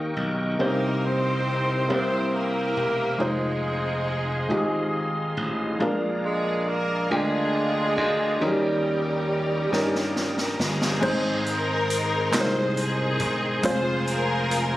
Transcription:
Already playing: D#2 D#3 A#3 D#4 G4 A#4 D#5 G5 C#6
0.16 B1
0.58 C2 C3 A#3 C#4 G4 A#4 C5 C6
0.63 A#3 D#4
1.04 C4 D#4 G4 C5
1.88 C2 C3 A#3 C4 E4 G4 C5 E5 C6
1.92 E4
2.35 A#3 E4 G4 A#4
2.77 E1
3.18 F1 G#3 C4 D#4 F4 G#4 C5 D#5 F5
3.23 G#4
4.49 G#1 G#3 D#4 F4 G4
4.58 G#4
5.37 A1
5.80 A#1 A#2 G#3 D4 F4 A#4 D5 A#5
6.25 G#3 G#4
6.68 A#3 A#4
7.10 D2 G#3 D4 F4 G#4 G5
7.97 D2
8.40 D#2 D#3 F#3 A#3 C#4 D#4 G4 A#4 D#5 G5
8.44 G3
9.71 G2 G3 C#4 D#4 A#4, snare
9.95 snare
10.16 snare
10.38 snare
10.59 G1 C4 D#4, snare
10.63 G#4
10.82 snare
11.01 G#1 G#2 G#3 C4 D#4 G#4 C5 D#5 C6, kick, crash
11.46 D#4, closed hi-hat
11.51 A#4
11.90 closed hi-hat
12.31 C2 G#3 C4 D#4 A#4, snare, clap, closed hi-hat
12.37 C5
12.77 C4 D#4 G#4, closed hi-hat
13.20 E1, kick, closed hi-hat
13.63 F1 G#3 C4 F4 C5 F5, kick, closed hi-hat
13.67 G#4 C5
14.07 F4 A#4, closed hi-hat
14.51 closed hi-hat

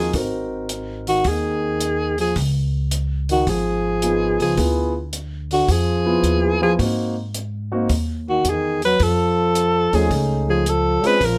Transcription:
Already playing: D#2 F3 C4 D#4 F#4 A#4
0.00 G#4
0.13 G#1 C4 D#4 F#4 A#4, kick, open hi-hat
0.69 closed hi-hat
1.07 D#3 F#4, open hi-hat
1.24 D#2 D#3 G#4, kick, open hi-hat
1.81 closed hi-hat
2.18 F3 G#4, open hi-hat
2.36 C#2, kick, open hi-hat
2.91 closed hi-hat
3.29 D#3 F#4, open hi-hat
3.47 G#1 F3 G#4, kick, open hi-hat
4.02 B3 D#4 F4 G#4, closed hi-hat
4.40 C#2 F3 G#4, open hi-hat
4.57 D2 B3 E4 F4 G#4, kick, open hi-hat
5.13 closed hi-hat
5.51 D3 F#4, open hi-hat
5.68 F2 F3 G#4, kick, open hi-hat
6.06 B3 E4 F4 G#4
6.23 D#2, closed hi-hat
6.61 F3 G#4
6.79 G#2 A#3 C4 D#4 F#4, kick, open hi-hat
7.34 closed hi-hat
7.72 A#3 C4 D#4 F#4
7.89 D#2, kick, open hi-hat
8.29 D#3 F#4
8.44 E2 D#3, closed hi-hat
8.49 G#4
8.82 F#3 B4, open hi-hat
9.00 F2 F3 A4, kick, open hi-hat
9.55 closed hi-hat
9.93 D#2 F3 A3 C#4 D#4 G#4, open hi-hat
10.11 C#2, kick, open hi-hat
10.48 F3 G#4
10.66 F3 A4, closed hi-hat
11.03 G#3 C4 C#4 F4 G#4 B4, muted upright bass stroke, open hi-hat
11.21 A#1 F3 A#4, kick, open hi-hat

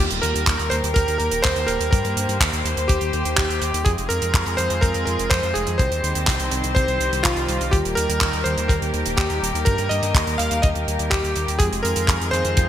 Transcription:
0.00 D#3 G3 A#3 G4 A#4
0.11 D#1, closed hi-hat
0.22 D#2 A#4, closed hi-hat
0.35 D#2, closed hi-hat
0.47 D#2, kick, clap, closed hi-hat
0.59 D#2, closed hi-hat
0.70 D#2 C5, closed hi-hat
0.84 D#2, closed hi-hat
0.94 D#2 A#4, kick, closed hi-hat
1.08 D#2, closed hi-hat
1.18 D#2 A#4, closed hi-hat
1.31 D#1, closed hi-hat
1.42 D#2 C5, kick, clap, closed hi-hat
1.56 D#2, closed hi-hat
1.67 D#1 A#4, closed hi-hat
1.80 D#2, closed hi-hat
1.91 G2 A#4 C5, kick, closed hi-hat
2.05 G2, closed hi-hat
2.17 G2, closed hi-hat
2.29 G2, closed hi-hat
2.41 D#2, kick, clap, closed hi-hat
2.53 D#2, closed hi-hat
2.65 D#2, closed hi-hat
2.77 D#2, closed hi-hat
2.88 D#2 G4, kick, closed hi-hat
3.01 D#2, closed hi-hat
3.13 D#2, closed hi-hat
3.25 D#2, closed hi-hat
3.36 D#2 G4, kick, clap, closed hi-hat
3.50 D#2, closed hi-hat
3.62 D#2, closed hi-hat
3.74 D#2, closed hi-hat
3.85 F2 G#3 C4 F4 G#4, kick, closed hi-hat
3.98 F1, closed hi-hat
4.09 F2 A#4, closed hi-hat
4.22 F2, closed hi-hat
4.34 F2, kick, clap, closed hi-hat
4.46 F2, closed hi-hat
4.57 F2 C5, closed hi-hat
4.70 F2, closed hi-hat
4.81 F2 A#4, kick, closed hi-hat
4.94 F2, closed hi-hat
5.05 F2 A#4, closed hi-hat
5.19 F1, closed hi-hat
5.30 F2 C5, kick, clap, closed hi-hat
5.43 F2, closed hi-hat
5.54 F1 G#4, closed hi-hat
5.67 F2, closed hi-hat
5.78 C2 G3 C4 G4 C5, kick, closed hi-hat
5.91 D#2, closed hi-hat
6.04 D#2, closed hi-hat
6.15 D#2, closed hi-hat
6.27 C2, kick, clap, closed hi-hat
6.40 C2, closed hi-hat
6.51 C2, closed hi-hat
6.64 C2, closed hi-hat
6.75 C2 C5, kick, closed hi-hat
6.88 C2, closed hi-hat
7.00 C2, closed hi-hat
7.12 C2, closed hi-hat
7.23 C2 F4, kick, clap, closed hi-hat
7.37 C2, closed hi-hat
7.49 C2, closed hi-hat
7.61 C2, closed hi-hat
7.71 D#2 A#3 G4 A#4, kick, closed hi-hat
7.85 D#1, closed hi-hat
7.95 D#2 A#4, closed hi-hat
8.09 D#2, closed hi-hat
8.21 D#2, kick, clap, closed hi-hat
8.33 D#2, closed hi-hat
8.44 D#2 C5, closed hi-hat
8.57 D#2, closed hi-hat
8.68 D#2 A#4, kick, closed hi-hat
8.82 D#2, closed hi-hat
8.94 D#2, closed hi-hat
9.06 D#1, closed hi-hat
9.17 D#2 G4, kick, clap, closed hi-hat
9.30 D#2, closed hi-hat
9.42 D#1, closed hi-hat
9.54 D#2, closed hi-hat
9.65 G2 A#4, kick, closed hi-hat
9.78 G2, closed hi-hat
9.89 G2 D#5, closed hi-hat
10.03 G2, closed hi-hat
10.15 D#2, kick, clap, closed hi-hat
10.27 D#2, closed hi-hat
10.38 D#2 F5, closed hi-hat
10.51 D#2, closed hi-hat
10.62 D#2 D#5, kick, closed hi-hat
10.75 D#2, closed hi-hat
10.88 D#2, closed hi-hat
10.99 D#2, closed hi-hat
11.10 D#2 G4, kick, clap, closed hi-hat
11.24 D#2, closed hi-hat
11.36 D#2, closed hi-hat
11.48 D#2, closed hi-hat
11.59 F2 D#3 G#3 C4 F4 G#4, kick, closed hi-hat
11.72 F1, closed hi-hat
11.83 F2 A#4, closed hi-hat
11.96 F2, closed hi-hat
12.08 F2, kick, clap, closed hi-hat
12.21 F2, closed hi-hat
12.31 F2 C5, closed hi-hat
12.45 F2, closed hi-hat
12.57 F2, kick, closed hi-hat

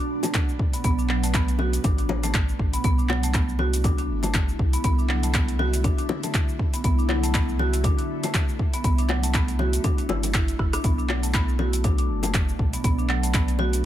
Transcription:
Already playing: B2 B3 D4
0.23 A3, closed hi-hat, high bongo, low bongo, cabasa
0.34 kick, clap, closed hi-hat, low bongo, cabasa
0.49 cabasa
0.59 kick
0.73 B3, closed hi-hat, cabasa
0.84 B1 B3, kick, closed hi-hat, cabasa
0.99 D4, cabasa
1.09 F#3, clap
1.24 A3, closed hi-hat, cabasa
1.34 B3, kick, clap, closed hi-hat, cabasa
1.48 closed hi-hat, cabasa
1.59 F#4, low bongo
1.73 closed hi-hat, cabasa
1.84 A1 D4, kick, closed hi-hat, low bongo, cabasa
1.98 D4, closed hi-hat, cabasa
2.09 high bongo, low bongo
2.23 A3, closed hi-hat, low bongo, cabasa
2.34 A1, kick, clap, closed hi-hat, cabasa
2.49 cabasa
2.59 A1, kick
2.73 B3, closed hi-hat, cabasa
2.84 C2 D3 A3 B3 E4, kick, closed hi-hat, cabasa
2.99 D4, cabasa
3.09 F#3, clap, high bongo
3.23 A3, closed hi-hat, cabasa
3.34 B3, kick, clap, closed hi-hat, cabasa
3.49 cabasa
3.59 F#4, low bongo
3.73 closed hi-hat, cabasa
3.84 D4, kick, closed hi-hat, low bongo, cabasa
3.98 D4, closed hi-hat, cabasa
4.09 G1
4.23 A3, closed hi-hat, high bongo, low bongo, cabasa
4.34 kick, clap, closed hi-hat, low bongo, cabasa
4.49 cabasa
4.59 C2, kick
4.73 B3, closed hi-hat, cabasa
4.84 C2 B3, kick, closed hi-hat, cabasa
4.99 D4, cabasa
5.09 F#3, clap
5.23 A3, closed hi-hat, cabasa
5.34 B3, kick, clap, closed hi-hat, cabasa
5.48 closed hi-hat, cabasa
5.59 F#4, low bongo
5.74 closed hi-hat, cabasa
5.84 D4, kick, closed hi-hat, low bongo, cabasa
5.98 D4, closed hi-hat, cabasa
6.09 high bongo, low bongo
6.23 A3, closed hi-hat, low bongo, cabasa
6.34 kick, clap, closed hi-hat, cabasa
6.49 cabasa
6.59 kick
6.74 B3, closed hi-hat, cabasa
6.84 C2 B3, kick, closed hi-hat, cabasa
6.99 D4, cabasa
7.09 F#3, clap, high bongo
7.24 A3, closed hi-hat, cabasa
7.34 B3, kick, clap, closed hi-hat, cabasa
7.49 cabasa
7.59 F#4, low bongo
7.74 closed hi-hat, cabasa
7.84 D4, kick, closed hi-hat, low bongo, cabasa
7.99 D4, closed hi-hat, cabasa
8.23 A3, closed hi-hat, high bongo, low bongo, cabasa
8.34 kick, clap, closed hi-hat, low bongo, cabasa
8.49 cabasa
8.59 kick
8.74 B3, closed hi-hat, cabasa
8.84 C2 B3, kick, closed hi-hat, cabasa
8.98 D4, closed hi-hat, cabasa
9.09 F#3, clap, high bongo
9.23 A3, closed hi-hat, cabasa
9.34 B3, kick, clap, closed hi-hat, cabasa
9.48 closed hi-hat, cabasa
9.59 F#4, low bongo
9.73 closed hi-hat, cabasa
9.84 D4, kick, closed hi-hat, low bongo, cabasa
9.98 D4, closed hi-hat, cabasa
10.09 G1 E4, high bongo, low bongo
10.23 closed hi-hat, low bongo, cabasa
10.34 E4, kick, clap, closed hi-hat, cabasa
10.48 closed hi-hat, cabasa
10.59 G1 E4, kick, cross-stick
10.73 D4, cross-stick, closed hi-hat, cabasa
10.84 B1 B2 B3 D4, kick, closed hi-hat, cabasa
10.98 D4, cabasa
11.09 F#3, clap, high bongo
11.23 A3, closed hi-hat, cabasa
11.34 B3, kick, clap, closed hi-hat, cabasa
11.49 cabasa
11.59 F#4, low bongo
11.73 closed hi-hat, cabasa
11.84 D4, kick, closed hi-hat, low bongo, cabasa
11.98 D4, closed hi-hat, cabasa
12.09 F#1
12.23 A3, closed hi-hat, high bongo, low bongo, cabasa
12.34 kick, clap, closed hi-hat, low bongo, cabasa
12.49 cabasa
12.59 B1, kick
12.73 B3, closed hi-hat, cabasa
12.84 B1 B3, kick, closed hi-hat, cabasa
12.99 D4, cabasa
13.09 F#3, clap
13.23 A3, closed hi-hat, cabasa
13.34 B3, kick, clap, closed hi-hat, cabasa
13.48 closed hi-hat, cabasa
13.59 F#4, low bongo
13.73 closed hi-hat, cabasa

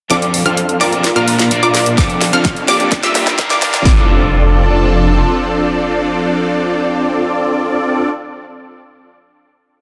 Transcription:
0.10 F1 F3 C4 D4 F4 A4 D5 D6, snare, closed hi-hat, riser
0.22 closed hi-hat
0.34 open hi-hat
0.45 F2 F3 C4 D4 F4 A4 F5 F6, closed hi-hat
0.57 closed hi-hat
0.69 closed hi-hat
0.80 A#1 C4 D4 F4 A4 A#4 D5 D6, snare, open hi-hat
0.93 closed hi-hat
1.04 A#3 D4 F4, snare, closed hi-hat
1.15 A#1 A#2 A#3 D4 F4 A#4 F5 F6, closed hi-hat
1.28 open hi-hat
1.39 snare, closed hi-hat
1.50 A#2 A#3 D4 F4 D5, closed hi-hat
1.63 A#1 F4 A#4 D5 D6, closed hi-hat
1.74 snare, open hi-hat
1.86 closed hi-hat
1.97 F1 F3 C4 D4 F4 A4 D5 D6, kick, snare, closed hi-hat
2.10 closed hi-hat
2.21 snare, open hi-hat
2.32 F2 F3 C4 D4 F4 A4 F5 F6, closed hi-hat
2.45 kick, snare, closed hi-hat
2.56 closed hi-hat
2.68 G1 A#3 C4 D4 F4 G4 A4 D5 D6, snare, open hi-hat
2.80 closed hi-hat
2.92 G3 F4 A#4, kick, snare, closed hi-hat
3.03 G1 G2 A#3 D4 F4 G4 E5 E6, snare, closed hi-hat
3.15 snare, open hi-hat
3.27 snare, closed hi-hat
3.38 G2 A#3 D4 F4 A#4, kick, snare, closed hi-hat
3.50 G2 A#3 D4 F4 G4 D5 D6, snare, closed hi-hat
3.62 snare, open hi-hat
3.74 snare, closed hi-hat
3.84 F1 F3 C4 D4 F4 A4 D5 D6, kick, snare, impact

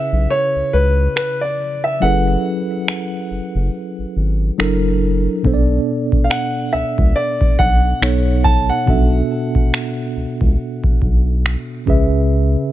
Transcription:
Already playing: C#3 C#4 E4 G#4 B4 E5
0.13 B1
0.30 C#5
0.56 C#2
0.73 C#2 B4
1.16 B4, finger snap
1.41 D5
1.84 E5
2.00 F#1 F#3 C#4 E4 G#4 A4 F#5
2.04 B4
2.88 finger snap
3.31 F#1
3.55 F#1
3.98 G#1
4.16 G#1
4.58 F#1 F#3 D4 E4 A4 A#4, finger snap
5.43 B1 B2 B3 D4 A4, kick
5.47 C5
5.54 D5
6.12 kick
6.24 F5
6.30 F#5, finger snap
6.73 C#2 E5
6.98 C#2, kick
7.16 D5
7.41 B1, kick
7.59 B1 F#5, kick
8.01 B1 B2 B3 D#4 A4 C#5, finger snap
8.44 A5, kick
8.69 F#5
8.86 B1 B2 B3 D4 F#4 A4, kick
8.90 E5
9.55 kick
9.74 finger snap
10.16 C#2
10.41 C#2, kick
10.84 B1, kick
11.02 B1, kick
11.46 finger snap
11.86 C#2 C#3 C#4 G#4 B4, kick
11.90 E5

